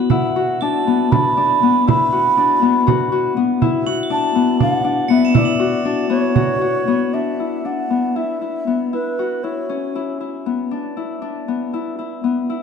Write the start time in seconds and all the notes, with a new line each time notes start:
Already playing: B3 D4 E4 F#4
0.10 E4 F#5, frame drum
0.36 F#4
0.61 D4 A5 A7
0.87 B3, frame drum
1.12 D4 B5, frame drum
1.37 D4
1.63 B3
1.87 E4 B5, frame drum
2.13 F#4
2.37 D4
2.62 B3, frame drum
2.87 F#4, frame drum
3.12 F#4
3.37 B3
3.62 E4, frame drum
3.86 F#4 F#7
4.03 A7
4.10 D4 A5
4.35 B3, frame drum
4.60 D4 F#5, frame drum
4.84 D4
5.08 B3 E5 C#7
5.25 E7
5.34 E4 D5, frame drum
5.45 F#7
5.60 F#4
5.85 D4
6.10 B3 C#5
6.35 F#4, frame drum
6.61 F#4
6.88 B3
7.13 D4 E5
7.40 E4
7.65 D4 F#5
7.90 B3
8.16 E4 E5
8.41 E4
8.67 B3
8.93 E4 B4
9.19 F#4
9.44 E4 C#5
9.69 C#4
9.95 E4
10.21 E4
10.46 B3
10.71 D4
10.97 E4
11.22 D4
11.48 B3
11.73 E4
11.99 E4
12.24 B3
12.50 E4